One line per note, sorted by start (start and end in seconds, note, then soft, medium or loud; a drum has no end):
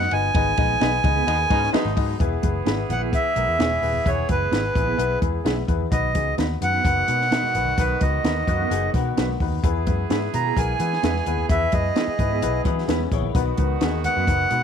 0.00 0.13 F#5 loud
0.00 snare soft
0.00 high conga medium
0.11 0.29 G1 loud
0.11 0.28 B3 medium
0.11 0.28 D#4 medium
0.11 0.28 F#4 medium
0.11 0.28 B4 medium
0.11 0.28 D#5 medium
0.11 1.70 G#5 loud
0.11 ride medium
0.11 muted conga soft
0.34 0.52 G#1 loud
0.34 0.51 B3 medium
0.34 0.51 D#4 medium
0.34 0.51 G#4 medium
0.34 0.51 B4 medium
0.34 0.51 D#5 loud
0.34 kick loud
0.34 ride medium
0.34 low conga medium
0.57 0.75 A#1 medium
0.57 0.74 B3 medium
0.57 0.74 D#4 medium
0.57 0.74 G#4 medium
0.57 0.74 B4 medium
0.57 0.74 D#5 loud
0.57 kick loud
0.57 ride medium
0.57 high conga medium
0.80 0.98 B1 loud
0.80 0.90 B3 medium
0.80 0.97 B3 medium
0.80 0.97 D#4 medium
0.80 0.91 D#4 medium
0.80 0.97 G#4 medium
0.80 0.91 G#4 medium
0.80 0.97 B4 medium
0.80 0.91 B4 loud
0.80 0.97 D#5 loud
0.80 snare loud
0.80 ride medium
0.80 muted conga soft
1.03 1.21 C#2 loud
1.03 1.20 B3 medium
1.03 1.20 D#4 medium
1.03 1.20 G#4 medium
1.03 1.20 B4 medium
1.03 1.21 D#5 loud
1.03 kick loud
1.03 ride medium
1.03 muted conga soft
1.03 high conga soft
1.03 low conga medium
1.15 1.24 B3 medium
1.15 1.23 D#4 medium
1.15 1.23 G#4 medium
1.15 1.23 B4 medium
1.26 1.44 D#2 loud
1.26 1.37 B2 medium
1.26 1.50 D#3 medium
1.26 1.37 G#3 medium
1.26 1.43 B3 medium
1.26 1.49 B3 medium
1.26 1.43 D#4 medium
1.26 1.37 D#4 medium
1.26 1.43 G#4 medium
1.26 1.43 B4 medium
1.26 1.43 D#5 medium
1.26 ride medium
1.50 1.67 G#2 loud
1.50 1.60 B2 medium
1.50 1.60 G#3 medium
1.50 1.66 B3 medium
1.50 1.72 C#4 loud
1.50 1.60 D#4 loud
1.50 1.66 D#4 medium
1.50 1.66 G#4 medium
1.50 1.67 B4 medium
1.50 1.67 D#5 medium
1.50 kick medium
1.50 ride medium
1.50 high conga medium
1.64 snare soft
1.72 2.18 B2 medium
1.72 2.18 F#3 medium
1.72 2.18 G#3 medium
1.72 1.89 B3 loud
1.72 1.83 B3 medium
1.72 1.89 D#4 medium
1.72 2.18 D#4 medium
1.72 1.83 D#4 loud
1.72 1.89 G#4 loud
1.72 1.84 G#4 loud
1.72 1.90 B4 medium
1.72 1.84 B4 loud
1.72 1.90 D#5 loud
1.72 muted picked electric bass stroke medium
1.72 snare loud
1.72 ride medium
1.85 1.94 G#1 medium
1.85 snare soft
1.85 high conga medium
1.96 2.14 G#2 loud
1.96 2.12 B3 loud
1.96 2.13 D#4 medium
1.96 2.13 G#4 medium
1.96 2.13 B4 medium
1.96 2.13 D#5 loud
1.96 kick medium
1.96 open hi-hat soft
1.96 ride medium
2.19 2.37 E1 loud
2.19 5.64 E3 medium
2.19 2.36 B3 loud
2.19 5.65 B3 medium
2.19 2.36 E4 medium
2.19 5.64 G#4 medium
2.19 2.36 G#4 medium
2.19 2.36 B4 loud
2.19 kick loud
2.19 closed hi-hat loud
2.19 muted conga soft
2.19 low conga medium
2.42 2.60 F#1 medium
2.42 2.59 B3 medium
2.42 2.59 E4 medium
2.42 2.59 G#4 medium
2.42 2.59 B4 medium
2.42 kick medium
2.42 closed hi-hat medium
2.42 muted conga soft
2.42 high conga medium
2.65 2.83 G#1 medium
2.65 2.76 B3 medium
2.65 2.82 B3 medium
2.65 2.82 E4 medium
2.65 2.76 E4 medium
2.65 2.82 G#4 medium
2.65 2.76 G#4 medium
2.65 2.83 B4 medium
2.65 2.77 B4 medium
2.65 snare loud
2.65 closed hi-hat medium
2.65 muted conga soft
2.89 3.15 A#1 medium
2.89 3.05 B3 medium
2.89 3.06 E4 medium
2.89 3.06 G#4 medium
2.89 3.06 B4 medium
2.89 3.02 F#5 medium
2.89 closed hi-hat medium
2.89 high conga soft
2.89 low conga medium
3.00 3.09 B3 medium
3.00 3.09 E4 medium
3.00 3.09 G#4 medium
3.00 3.08 B4 medium
3.12 3.29 B3 medium
3.12 3.29 E4 medium
3.12 3.29 G#4 medium
3.12 3.29 B4 medium
3.12 4.10 E5 medium
3.12 kick medium
3.12 closed hi-hat medium
3.35 3.45 B1 medium
3.35 3.52 B3 medium
3.35 3.52 E4 medium
3.35 3.52 G#4 medium
3.35 3.52 A#4 medium
3.35 closed hi-hat medium
3.35 muted conga soft
3.35 high conga medium
3.48 3.56 E2 medium
3.58 3.77 E1 medium
3.58 3.69 B3 medium
3.58 3.75 B3 medium
3.58 3.75 E4 medium
3.58 3.69 E4 medium
3.58 3.76 G#4 medium
3.58 3.69 G#4 medium
3.58 3.69 B4 medium
3.58 3.76 C#5 medium
3.58 snare loud
3.58 closed hi-hat medium
3.71 high conga medium
3.82 3.99 D#1 medium
3.82 3.98 B3 medium
3.82 3.99 E4 medium
3.82 3.99 G#4 medium
3.82 3.99 B4 medium
3.82 open hi-hat soft
3.82 muted conga soft
3.93 low conga medium
4.05 4.23 E1 loud
4.05 4.22 B3 medium
4.05 4.22 E4 medium
4.05 4.22 G#4 medium
4.05 4.22 B4 medium
4.05 4.28 C#5 medium
4.05 kick loud
4.05 closed hi-hat medium
4.05 muted conga soft
4.05 low conga medium
4.28 4.46 F#1 medium
4.28 4.45 B3 medium
4.28 4.45 E4 medium
4.28 4.45 G#4 medium
4.28 4.46 B4 medium
4.28 5.19 B4 medium
4.28 kick medium
4.28 closed hi-hat medium
4.28 muted conga soft
4.28 high conga medium
4.51 4.69 G#1 medium
4.51 4.68 B3 medium
4.51 4.62 B3 medium
4.51 4.68 E4 medium
4.51 4.62 E4 medium
4.51 4.68 G#4 medium
4.51 4.62 G#4 medium
4.51 4.69 B4 medium
4.51 4.62 B4 medium
4.51 snare loud
4.51 closed hi-hat medium
4.74 4.93 A#1 medium
4.74 4.91 B3 medium
4.74 4.91 E4 medium
4.74 4.92 G#4 medium
4.74 4.92 B4 medium
4.74 kick loud
4.74 closed hi-hat medium
4.74 muted conga soft
4.74 high conga soft
4.74 low conga medium
4.87 4.95 B3 medium
4.87 4.95 E4 medium
4.87 4.95 G#4 medium
4.87 4.94 B4 medium
4.97 5.15 B1 loud
4.97 5.14 B3 loud
4.97 5.15 E4 medium
4.97 5.15 G#4 medium
4.97 5.15 B4 loud
4.97 closed hi-hat medium
5.21 5.39 E2 medium
5.21 5.38 B3 medium
5.21 5.38 E4 medium
5.21 5.38 G#4 medium
5.21 5.38 B4 medium
5.21 kick medium
5.21 closed hi-hat medium
5.21 high conga medium
5.44 5.62 B1 medium
5.44 5.61 B3 medium
5.44 5.55 B3 medium
5.44 5.61 E4 medium
5.44 5.55 E4 medium
5.44 5.62 G#4 medium
5.44 5.55 G#4 loud
5.44 5.62 B4 medium
5.44 5.56 B4 medium
5.44 snare loud
5.44 closed hi-hat medium
5.57 high conga soft
5.67 5.86 E2 medium
5.67 5.84 B3 medium
5.67 5.84 E4 medium
5.67 5.85 G#4 medium
5.67 5.85 B4 medium
5.67 kick medium
5.67 closed hi-hat medium
5.67 muted conga soft
5.80 low conga medium
5.91 6.15 B1 loud
5.91 6.08 B3 medium
5.91 6.08 D#4 medium
5.91 6.08 F#4 medium
5.91 6.08 B4 loud
5.91 6.35 D#5 loud
5.91 kick loud
5.91 closed hi-hat medium
5.91 low conga medium
6.14 6.32 C#2 medium
6.14 6.31 B3 medium
6.14 6.31 D#4 medium
6.14 6.31 F#4 medium
6.14 6.32 G#4 medium
6.14 kick loud
6.14 closed hi-hat medium
6.14 high conga medium
6.37 6.55 D#2 medium
6.37 6.54 B3 medium
6.37 6.48 B3 medium
6.37 6.54 D#4 medium
6.37 6.48 D#4 medium
6.37 6.55 F#4 medium
6.37 6.48 F#4 medium
6.37 6.55 B4 medium
6.37 6.49 B4 medium
6.37 snare medium
6.37 closed hi-hat medium
6.37 muted conga soft
6.61 6.79 F#2 medium
6.61 6.78 B3 medium
6.61 6.78 D#4 medium
6.61 6.78 F#4 medium
6.61 6.78 B4 medium
6.61 7.82 F#5 loud
6.61 closed hi-hat medium
6.61 high conga soft
6.61 low conga soft
6.73 6.82 B3 medium
6.73 6.81 D#4 medium
6.73 6.81 F#4 medium
6.73 6.81 B4 medium
6.84 7.02 F#1 loud
6.84 9.36 D#3 medium
6.84 9.36 B3 medium
6.84 7.01 B3 medium
6.84 7.01 D#4 medium
6.84 9.36 F#4 medium
6.84 7.01 F#4 medium
6.84 7.01 B4 medium
6.84 kick loud
6.84 closed hi-hat medium
7.07 7.56 B2 medium
7.07 7.24 B3 medium
7.07 7.24 D#4 medium
7.07 7.24 F#4 medium
7.07 7.25 B4 medium
7.07 closed hi-hat medium
7.07 muted conga soft
7.07 high conga medium
7.21 snare soft
7.31 7.47 B3 medium
7.31 7.41 B3 medium
7.31 7.48 D#4 medium
7.31 7.41 D#4 medium
7.31 7.48 F#4 medium
7.31 7.42 F#4 medium
7.31 7.48 B4 medium
7.31 7.42 B4 loud
7.31 snare loud
7.31 closed hi-hat medium
7.31 muted conga soft
7.43 snare soft
7.43 high conga medium
7.54 7.72 B1 medium
7.54 7.71 B3 medium
7.54 7.71 D#4 medium
7.54 7.71 F#4 medium
7.54 7.71 B4 medium
7.54 closed hi-hat medium
7.54 muted conga soft
7.65 low conga medium
7.77 7.95 B1 loud
7.77 7.94 B3 medium
7.77 7.94 D#4 medium
7.77 7.94 F#4 medium
7.77 7.95 B4 medium
7.77 8.03 B4 medium
7.77 kick loud
7.77 closed hi-hat loud
7.77 muted conga soft
7.77 low conga medium
8.01 8.18 C#2 medium
8.01 8.17 B3 medium
8.01 8.18 D#4 medium
8.01 8.18 F#4 medium
8.01 8.18 B4 medium
8.01 8.90 D#5 medium
8.01 kick loud
8.01 closed hi-hat medium
8.01 high conga medium
8.23 8.41 D#2 medium
8.23 8.40 B3 medium
8.23 8.34 B3 medium
8.23 8.41 D#4 medium
8.23 8.34 D#4 medium
8.23 8.41 F#4 medium
8.23 8.35 F#4 medium
8.23 8.41 A#4 medium
8.23 8.35 B4 medium
8.23 snare loud
8.23 closed hi-hat medium
8.23 muted conga soft
8.47 8.65 F#2 medium
8.47 8.70 A#3 medium
8.47 8.64 B3 medium
8.47 8.64 D#4 medium
8.47 8.70 F#4 medium
8.47 8.64 F#4 medium
8.47 8.64 B4 medium
8.47 kick medium
8.47 closed hi-hat medium
8.47 high conga soft
8.47 low conga medium
8.59 8.68 B3 medium
8.59 8.68 D#4 medium
8.59 8.67 F#4 medium
8.59 8.67 B4 medium
8.70 8.88 F#1 loud
8.70 8.93 F#3 medium
8.70 8.87 B3 loud
8.70 8.87 D#4 medium
8.70 8.93 D#4 medium
8.70 8.87 F#4 medium
8.70 8.87 G#4 loud
8.70 closed hi-hat medium
8.70 muted conga soft
8.94 9.11 B2 medium
8.94 9.61 D#3 medium
8.94 9.10 B3 medium
8.94 9.61 B3 medium
8.94 9.10 D#4 medium
8.94 9.11 F#4 medium
8.94 9.11 B4 medium
8.94 kick medium
8.94 closed hi-hat medium
8.94 high conga medium
9.17 9.35 B1 medium
9.17 9.33 B3 medium
9.17 9.27 B3 medium
9.17 9.34 D#4 medium
9.17 9.27 D#4 medium
9.17 9.34 F#4 medium
9.17 9.27 F#4 medium
9.17 9.34 B4 medium
9.17 9.28 B4 loud
9.17 snare loud
9.17 closed hi-hat medium
9.29 high conga medium
9.40 9.57 D#2 medium
9.40 9.57 B3 medium
9.40 9.57 D#4 medium
9.40 9.57 F#4 medium
9.40 9.57 B4 medium
9.40 kick medium
9.40 open hi-hat soft
9.52 low conga medium
9.63 9.88 E2 loud
9.63 13.07 E3 medium
9.63 13.07 B3 medium
9.63 9.80 B3 medium
9.63 9.80 E4 medium
9.63 13.08 G#4 medium
9.63 9.80 G#4 medium
9.63 9.80 B4 loud
9.63 kick loud
9.63 closed hi-hat loud
9.63 muted conga soft
9.63 low conga medium
9.86 10.04 F#2 medium
9.86 10.03 B3 medium
9.86 10.03 E4 medium
9.86 10.03 G#4 medium
9.86 10.03 B4 medium
9.86 kick medium
9.86 closed hi-hat medium
9.86 muted conga soft
9.86 high conga medium
10.09 10.28 G#2 medium
10.09 10.20 B3 medium
10.09 10.26 B3 medium
10.09 10.26 E4 medium
10.09 10.20 E4 medium
10.09 10.27 G#4 medium
10.09 10.20 G#4 medium
10.09 10.27 B4 loud
10.09 10.21 B4 medium
10.09 snare loud
10.09 closed hi-hat medium
10.09 muted conga soft
10.33 10.51 B2 medium
10.33 10.50 B3 medium
10.33 10.50 E4 medium
10.33 10.50 G#4 medium
10.33 10.50 B4 medium
10.33 10.58 A#5 loud
10.33 closed hi-hat medium
10.33 muted conga soft
10.33 high conga soft
10.33 low conga medium
10.45 10.53 B3 soft
10.45 10.53 E4 medium
10.45 10.53 G#4 medium
10.45 10.52 B4 medium
10.56 10.74 B1 medium
10.56 10.73 B3 medium
10.56 10.73 E4 medium
10.56 10.73 G#4 medium
10.56 10.73 A#4 medium
10.56 11.46 G#5 medium
10.56 kick medium
10.56 closed hi-hat loud
10.79 10.97 E3 loud
10.79 10.96 B3 medium
10.79 10.96 E4 medium
10.79 10.96 G#4 medium
10.79 10.97 B4 medium
10.79 closed hi-hat medium
10.79 high conga medium
10.93 snare soft
11.03 11.20 E2 loud
11.03 11.13 B3 medium
11.03 11.19 B3 medium
11.03 11.20 E4 medium
11.03 11.13 E4 medium
11.03 11.20 G#4 medium
11.03 11.13 G#4 medium
11.03 11.20 B4 medium
11.03 11.14 B4 loud
11.03 snare loud
11.03 closed hi-hat medium
11.14 snare soft
11.14 high conga medium
11.26 11.43 D#2 medium
11.26 11.43 B3 medium
11.26 11.43 E4 medium
11.26 11.43 G#4 medium
11.26 11.43 B4 medium
11.26 closed hi-hat medium
11.38 low conga medium
11.49 11.67 E2 loud
11.49 11.66 B3 medium
11.49 11.66 E4 medium
11.49 11.66 G#4 medium
11.49 11.67 B4 medium
11.49 11.74 E5 loud
11.49 kick loud
11.49 closed hi-hat loud
11.49 low conga medium
11.72 11.90 F#2 medium
11.72 11.89 B3 medium
11.72 11.89 E4 medium
11.72 11.89 G#4 medium
11.72 11.90 B4 medium
11.72 12.62 D#5 medium
11.72 kick medium
11.72 closed hi-hat medium
11.72 muted conga soft
11.72 high conga medium
11.96 12.12 B3 medium
11.96 12.05 B3 medium
11.96 12.12 E4 medium
11.96 12.06 E4 medium
11.96 12.12 G#4 medium
11.96 12.06 G#4 medium
11.96 12.12 B4 medium
11.96 12.06 B4 medium
11.96 snare loud
11.96 closed hi-hat medium
12.08 muted picked electric bass stroke soft
12.18 12.44 G#2 medium
12.18 12.35 B3 medium
12.18 12.35 E4 medium
12.18 12.36 G#4 medium
12.18 12.36 B4 medium
12.18 kick medium
12.18 closed hi-hat medium
12.18 muted conga soft
12.18 high conga soft
12.18 low conga medium
12.30 12.39 B3 soft
12.30 12.39 E4 medium
12.30 12.39 G#4 medium
12.30 12.38 B4 medium
12.42 12.59 B1 medium
12.42 12.58 B3 medium
12.42 12.58 E4 medium
12.42 12.59 G#4 medium
12.42 12.59 B4 loud
12.42 closed hi-hat medium
12.64 12.82 E3 loud
12.64 12.88 F#3 medium
12.64 12.82 B3 medium
12.64 12.87 D#4 medium
12.64 12.82 E4 medium
12.64 12.82 G#4 medium
12.64 12.82 B4 medium
12.64 kick medium
12.64 closed hi-hat medium
12.64 muted conga soft
12.64 high conga medium
12.78 snare soft
12.88 13.06 E2 loud
12.88 13.11 E3 medium
12.88 13.05 B3 medium
12.88 12.98 B3 medium
12.88 13.11 C#4 medium
12.88 13.05 E4 medium
12.88 12.99 E4 loud
12.88 13.05 G#4 medium
12.88 12.99 G#4 medium
12.88 13.05 B4 medium
12.88 12.99 B4 medium
12.88 snare loud
12.88 closed hi-hat medium
12.99 high conga medium
13.11 13.29 A#1 medium
13.11 13.56 D#3 medium
13.11 13.28 B3 medium
13.11 13.56 B3 medium
13.11 13.28 E4 medium
13.11 13.28 G#4 medium
13.11 13.29 C#5 medium
13.11 kick medium
13.11 closed hi-hat medium
13.11 muted conga soft
13.22 low conga medium
13.34 13.52 B1 loud
13.34 14.63 D#3 medium
13.34 14.63 B3 medium
13.34 13.51 B3 loud
13.34 13.51 D#4 loud
13.34 14.63 F#4 medium
13.34 13.51 F#4 medium
13.34 13.52 B4 loud
13.34 kick loud
13.34 closed hi-hat medium
13.34 muted conga soft
13.34 low conga medium
13.58 13.75 C#2 medium
13.58 13.74 B3 medium
13.58 13.75 D#4 medium
13.58 13.75 F#4 medium
13.58 13.75 B4 medium
13.58 kick medium
13.58 closed hi-hat medium
13.58 muted conga soft
13.58 high conga medium
13.80 14.07 D#2 medium
13.80 13.91 B3 medium
13.80 13.97 B3 medium
13.80 13.98 D#4 medium
13.80 13.91 D#4 medium
13.80 13.92 F#4 medium
13.80 13.98 F#4 medium
13.80 13.98 G#4 loud
13.80 13.92 B4 medium
13.80 snare loud
13.80 closed hi-hat medium
13.80 muted conga soft
14.04 14.20 B3 medium
14.04 14.21 D#4 medium
14.04 14.21 F#4 medium
14.04 14.21 B4 medium
14.04 14.63 F#5 loud
14.04 closed hi-hat medium
14.04 muted conga soft
14.04 high conga soft
14.04 low conga medium
14.15 14.25 F#2 medium
14.15 14.24 B3 medium
14.15 14.24 D#4 medium
14.15 14.24 F#4 medium
14.15 14.23 B4 medium
14.27 14.45 F#1 loud
14.27 14.44 B3 medium
14.27 14.44 D#4 medium
14.27 14.44 F#4 medium
14.27 14.44 B4 medium
14.27 kick medium
14.27 closed hi-hat loud
14.50 14.63 B2 medium
14.50 14.63 B3 medium
14.50 14.63 D#4 medium
14.50 14.63 F#4 medium
14.50 14.63 B4 medium
14.50 closed hi-hat medium
14.50 muted conga soft
14.50 high conga medium